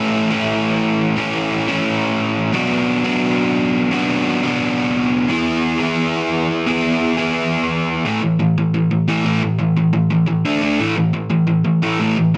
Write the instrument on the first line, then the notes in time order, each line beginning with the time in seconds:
overdriven electric guitar
Already playing: A2 E3 A3 C#4 E4
0.31 A2 E3 A3 C#4 E4
1.16 A2 E3 A3 C#4 E4
1.68 A2 E3 A3 C#4 E4
2.53 B2 F#3 B3 D4 F#4
3.05 B2 F#3 B3 D4 F#4
3.91 B2 F#3 B3 D4 F#4
4.43 B2 F#3 B3 D4 F#4
5.28 E3 B3 E4 G#4
5.79 E3 B3 E4 G#4
6.66 E3 B3 E4 G#4
7.17 E3 B3 E4 G#4
8.05 A2 E3 A3
8.22 A2 E3
8.39 A2 E3
8.58 A2 E3
8.74 A2 E3
8.91 A2 E3
9.08 A2 E3 A3
9.25 A2 E3 A3
9.42 A2 E3
9.59 A2 E3
9.77 A2 E3
9.93 A2 E3
10.10 A2 E3
10.26 A2 E3
10.45 D3 A3 D4
10.62 D3 A3 D4
10.79 A2 E3 A3
10.96 A2 E3
11.13 A2 E3
11.30 A2 E3
11.47 A2 E3
11.65 A2 E3
11.82 A2 E3 A3
12.00 A2 E3 A3
12.17 A2 E3
12.34 A2